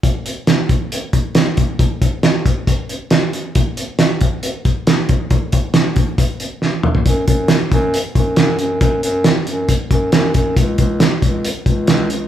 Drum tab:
HH |x-x-x-x-x-x-x-x-|x-x-x-x-x-x-x-x-|x-x-x-x-x-x-x-x-|x-x-x-x-x-x-----|
SD |----o-------o---|----o-------o---|----o-------o---|----o-------o---|
T2 |----------------|----------------|----------------|--------------o-|
FT |----------------|----------------|----------------|---------------o|
BD |o-----o---o---o-|o-o---o-o-------|o-----o---o---o-|o-o---o-o-------|

HH |x-x-x-x-x-x-x-x-|x-x-x-x-x-x-x-x-|x-x-x-x-x-x-x-x-|
SD |----o-------o---|----o-------o---|----o-------o---|
T2 |----------------|----------------|----------------|
FT |----------------|----------------|----------------|
BD |o-o---o---o-----|o-------o-o---o-|o-o---o---o-----|